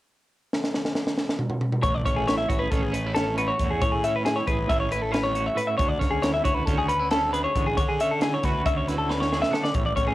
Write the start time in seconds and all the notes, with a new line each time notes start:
0.53 snare
0.64 snare
0.74 snare
0.85 snare
0.95 snare
1.07 snare
1.18 snare
1.29 snare
1.39 mid tom
1.50 mid tom
1.61 mid tom
1.72 mid tom
1.83 A1 A2 C#5, kick, closed hi-hat
1.95 D5
2.05 A1 C#4 C#5, kick, closed hi-hat
2.16 G#4
2.27 E4 C#5, snare, closed hi-hat
2.38 E5
2.49 A1 F#4 C#5, kick, closed hi-hat
2.59 G#4 B4
2.71 A1 C#4 A4, kick, closed hi-hat
2.82 G#4
2.92 C#4 B4, closed hi-hat
3.06 E4
3.15 C#4 A4, snare, closed hi-hat
3.38 F#4 B4, closed hi-hat
3.48 C#5
3.59 E2 A2, kick, closed hi-hat
3.71 G#4
3.82 A2 C#5, kick, closed hi-hat
3.92 G#4
4.04 C#4 E5, closed hi-hat
4.16 B4
4.25 E4 G#4, snare, closed hi-hat
4.36 C#5
4.47 A1 G#4 B4, kick, closed hi-hat
4.69 A1 C#4 E5, kick, closed hi-hat
4.80 C#5
4.91 E4 B4, closed hi-hat
5.02 A4
5.12 C#4 B4, snare, closed hi-hat
5.24 C#5
5.35 F#4, closed hi-hat
5.46 E5
5.55 A2 B4, closed hi-hat
5.67 E5
5.78 D2 D3 C#5, kick, closed hi-hat
5.89 D5
5.99 D2 C#4 C#5, kick, snare, closed hi-hat
6.11 G#4
6.22 E4 C#5, snare, closed hi-hat
6.34 E5
6.44 D2 F#4 C#5, kick, closed hi-hat
6.54 B4
6.66 D2 C#4 A4, kick, snare, closed hi-hat
6.78 G#4
6.87 C#4 B4, closed hi-hat
6.99 E4
7.11 C#4 A4, snare, closed hi-hat
7.33 G#4 B4, closed hi-hat
7.44 C#5
7.55 A1 D3, kick, closed hi-hat
7.66 G#4
7.77 D3 C#5, kick, closed hi-hat
7.88 G#4
8.00 C#4 E5, closed hi-hat
8.11 A4
8.21 E4 G#4, snare, closed hi-hat
8.34 C#5
8.43 D2 F#4 B4, kick, snare, closed hi-hat
8.66 D2 C#4 E5, kick, closed hi-hat
8.77 C#5
8.88 E4 B4, snare, closed hi-hat
8.98 A4
9.09 C#4 B4, snare
9.20 C#5, snare
9.32 G#4, snare
9.42 E5, snare
9.51 D3 A4, snare
9.64 D5, snare
9.74 A1 A2 C#5, kick, closed hi-hat
9.86 D5
9.96 A1 C#4 C#5, kick, closed hi-hat
10.08 G#4